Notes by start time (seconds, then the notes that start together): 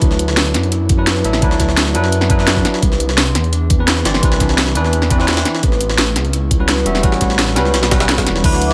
Already playing: F#3 D4 E4 B4
0.01 D2 B3, kick, closed hi-hat
0.11 snare
0.19 closed hi-hat
0.28 snare
0.37 D4, snare, closed hi-hat
0.46 closed hi-hat
0.54 F#2, snare, closed hi-hat
0.63 closed hi-hat
0.72 E4, closed hi-hat
0.89 kick, closed hi-hat
0.97 F#3 D4 E4 B4
1.07 B3, snare, closed hi-hat
1.16 snare
1.24 A1 F#3 D4 E4 E5, closed hi-hat
1.33 snare
1.41 D2 F#3 D4 E4 B4, kick, closed hi-hat
1.51 snare
1.60 E4, kick, snare, closed hi-hat
1.69 snare
1.77 snare, closed hi-hat
1.86 snare
1.94 F#2 F#3 B3 D4 E4 B4, closed hi-hat
2.04 snare
2.12 closed hi-hat
2.21 snare
2.29 F#3 B3 D4 E4 B4, kick, closed hi-hat
2.37 F#3 D4 E4 B4, snare
2.47 D4, snare, closed hi-hat
2.56 kick, snare
2.65 snare, closed hi-hat
2.74 snare
2.82 C2 B3, kick, closed hi-hat
2.92 snare
3.00 closed hi-hat
3.09 snare
3.18 C4, snare, closed hi-hat
3.27 closed hi-hat
3.35 E2, snare, closed hi-hat
3.44 closed hi-hat
3.53 D4, closed hi-hat
3.70 kick, closed hi-hat
3.78 E3 C4 D4 B4
3.88 B3, snare, closed hi-hat
3.97 snare
4.04 G1 E3 C4 D4 D5, snare, closed hi-hat
4.14 snare
4.22 C2 E3 D4 B4, kick, closed hi-hat
4.32 snare
4.40 D4, kick, snare, closed hi-hat
4.49 snare
4.58 snare, closed hi-hat
4.67 snare
4.75 E2 E3 B3 D4 B4, closed hi-hat
4.84 snare
4.93 closed hi-hat
5.02 snare
5.10 E3 C4 D4 B4, kick, closed hi-hat
5.18 E3 C4 D4 B4, snare
5.28 D4, snare, closed hi-hat
5.33 snare, closed hi-hat
5.37 snare, closed hi-hat
5.45 snare, closed hi-hat
5.55 snare
5.63 A1 B3, kick, closed hi-hat
5.72 snare
5.81 closed hi-hat
5.90 snare
5.98 C#4, snare, closed hi-hat
6.07 closed hi-hat
6.16 C#2, snare, closed hi-hat
6.25 closed hi-hat
6.33 E4, closed hi-hat
6.51 kick, closed hi-hat
6.59 G3 C#4 F#4 B4
6.68 B3, snare, closed hi-hat
6.77 snare
6.85 E1 G3 C#4 F#4 E5, closed hi-hat
6.95 snare
7.02 A1 G3 C#4 F#4 B4, kick, closed hi-hat
7.12 snare
7.21 E4, kick, snare, closed hi-hat
7.30 snare
7.39 snare, closed hi-hat
7.48 snare
7.55 C#2 G3 B3 C#4 F#4 B4, snare, closed hi-hat
7.65 snare
7.74 B1, snare, closed hi-hat
7.83 snare, closed hi-hat
7.90 G3 C#4 F#4 B4, kick, snare, closed hi-hat
7.99 G3 C#4 F#4 B4, snare, closed hi-hat
8.09 E4, snare, closed hi-hat
8.18 kick, snare, closed hi-hat
8.26 E1, snare, closed hi-hat
8.36 snare
8.42 D2 F#3 B3 D4 E4 B4 E5 F#5 D6, kick, closed hi-hat, crash, ride
8.53 snare
8.62 closed hi-hat